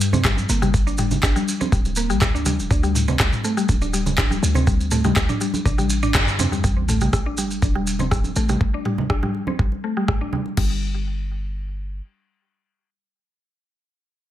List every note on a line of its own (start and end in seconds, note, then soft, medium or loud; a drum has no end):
0.00 0.46 G2 medium
0.00 maracas loud
0.13 0.24 C4 medium
0.13 high conga loud
0.13 low conga loud
0.13 maracas soft
0.24 0.36 G3 medium
0.24 kick loud
0.24 cross-stick loud
0.24 clap medium
0.24 mid tom medium
0.24 muted conga soft
0.24 maracas soft
0.37 high conga loud
0.37 maracas soft
0.49 1.20 G1 loud
0.49 0.61 A#3 medium
0.49 maracas medium
0.62 0.73 G3 loud
0.62 muted conga medium
0.62 low conga medium
0.62 maracas soft
0.74 kick loud
0.74 maracas soft
0.87 0.97 D4 medium
0.87 maracas soft
0.98 1.11 G3 medium
0.98 mid tom medium
0.98 muted conga soft
0.98 maracas medium
1.11 high conga medium
1.11 low conga medium
1.11 maracas soft
1.23 1.34 G1 medium
1.23 1.30 D4 medium
1.23 kick loud
1.23 cross-stick loud
1.23 clap loud
1.23 maracas medium
1.36 1.46 G3 loud
1.36 high conga medium
1.36 maracas soft
1.48 muted conga soft
1.48 maracas medium
1.61 1.71 C4 medium
1.61 high conga loud
1.61 maracas soft
1.72 2.11 D1 medium
1.72 1.84 G3 medium
1.72 kick loud
1.72 maracas medium
1.85 muted conga medium
1.85 maracas soft
1.96 2.09 A#3 medium
1.96 maracas medium
2.10 2.23 A#1 loud
2.10 2.20 G3 loud
2.10 maracas soft
2.21 2.61 D2 medium
2.21 kick loud
2.21 cross-stick loud
2.21 clap medium
2.21 mid tom medium
2.21 muted conga soft
2.21 maracas medium
2.35 2.45 D4 medium
2.35 maracas soft
2.46 2.58 G3 medium
2.46 high conga loud
2.46 low conga medium
2.46 maracas loud
2.59 2.68 D1 medium
2.59 muted conga medium
2.59 maracas soft
2.71 3.16 D2 loud
2.71 2.78 D4 medium
2.71 kick loud
2.71 maracas medium
2.83 2.94 G3 loud
2.83 maracas soft
2.95 mid tom loud
2.95 muted conga medium
2.95 maracas medium
3.08 3.19 C4 medium
3.08 low conga loud
3.08 maracas soft
3.20 3.30 D2 medium
3.20 3.31 G3 medium
3.20 kick loud
3.20 cross-stick loud
3.20 clap loud
3.20 maracas soft
3.32 mid tom medium
3.32 maracas soft
3.43 3.56 A3 medium
3.43 muted conga soft
3.43 maracas medium
3.57 3.68 G3 loud
3.57 maracas soft
3.69 4.39 D1 medium
3.69 kick loud
3.69 high conga loud
3.69 maracas medium
3.82 3.92 D4 medium
3.82 muted conga medium
3.82 maracas soft
3.93 4.06 G3 medium
3.93 maracas medium
4.06 high conga medium
4.06 low conga medium
4.06 maracas soft
4.18 4.25 D4 medium
4.18 kick loud
4.18 cross-stick loud
4.18 clap loud
4.18 mid tom medium
4.18 muted conga soft
4.18 maracas soft
4.30 4.41 G3 loud
4.30 high conga loud
4.30 maracas soft
4.43 5.13 D2 loud
4.43 maracas medium
4.54 4.66 C4 medium
4.54 muted conga medium
4.54 low conga medium
4.54 maracas soft
4.67 4.79 G3 medium
4.67 kick loud
4.67 maracas soft
4.81 maracas soft
4.91 5.03 A3 medium
4.91 mid tom loud
4.91 muted conga medium
4.91 maracas medium
5.04 5.15 G3 loud
5.04 high conga medium
5.04 low conga loud
5.04 maracas soft
5.16 5.27 D2 medium
5.16 kick loud
5.16 cross-stick loud
5.16 clap loud
5.16 maracas medium
5.29 5.40 D4 medium
5.29 mid tom medium
5.29 high conga loud
5.29 maracas soft
5.40 5.53 G3 medium
5.40 muted conga soft
5.40 maracas medium
5.54 high conga loud
5.54 maracas soft
5.65 6.16 A1 loud
5.65 5.73 D4 medium
5.65 kick loud
5.65 high tom medium
5.65 maracas soft
5.78 5.89 G3 loud
5.78 high tom medium
5.78 muted conga soft
5.78 maracas soft
5.90 maracas medium
6.03 6.14 D4 loud
6.03 mid tom medium
6.03 maracas soft
6.14 6.60 G2 loud
6.14 6.22 D3 medium
6.14 kick loud
6.14 cross-stick loud
6.14 clap loud
6.14 mid tom medium
6.14 muted conga soft
6.14 maracas soft
6.28 maracas soft
6.39 6.46 C4 medium
6.39 mid tom loud
6.39 high conga loud
6.39 low conga loud
6.39 maracas medium
6.52 6.63 G3 medium
6.52 mid tom medium
6.52 muted conga medium
6.52 maracas soft
6.64 7.10 A1 loud
6.64 6.76 G3 medium
6.64 kick loud
6.64 sub drop medium
6.64 maracas soft
6.88 7.00 A3 medium
6.88 mid tom loud
6.88 muted conga medium
6.88 maracas medium
7.01 7.12 G3 loud
7.01 low conga medium
7.01 maracas soft
7.13 7.24 A1 medium
7.13 kick loud
7.13 cross-stick loud
7.13 maracas soft
7.26 7.37 D4 medium
7.37 7.50 G3 medium
7.37 muted conga soft
7.37 maracas medium
7.51 maracas soft
7.62 8.33 E1 medium
7.62 7.69 D4 medium
7.62 kick loud
7.62 high conga loud
7.62 maracas soft
7.75 7.86 G3 loud
7.75 muted conga soft
7.87 maracas medium
7.99 8.10 C4 medium
7.99 high conga medium
7.99 low conga loud
7.99 maracas soft
8.11 8.23 G3 medium
8.11 kick loud
8.11 cross-stick medium
8.11 mid tom medium
8.11 muted conga soft
8.11 maracas soft
8.24 high conga medium
8.24 maracas soft
8.36 8.56 A1 loud
8.36 8.48 A3 medium
8.36 maracas medium
8.49 8.60 G3 loud
8.49 muted conga medium
8.49 low conga loud
8.49 maracas soft
8.61 kick loud
8.74 8.84 D4 medium
8.85 8.98 G3 medium
8.85 mid tom medium
8.85 muted conga soft
8.98 high conga medium
8.98 low conga loud
9.10 9.17 D4 medium
9.10 kick loud
9.10 cross-stick loud
9.23 9.33 G3 loud
9.23 mid tom medium
9.23 high conga loud
9.34 muted conga soft
9.47 9.58 C4 medium
9.47 high conga loud
9.59 9.71 G3 medium
9.59 kick loud
9.72 muted conga soft
9.84 9.95 A3 medium
9.97 10.07 G3 loud
10.08 kick loud
10.08 cross-stick loud
10.08 mid tom medium
10.08 muted conga soft
10.21 10.32 D4 medium
10.33 10.45 G3 medium
10.33 high conga medium
10.33 low conga loud
10.46 muted conga soft
10.57 12.01 G1 loud
10.57 10.80 G3 medium
10.57 kick loud
10.57 crash medium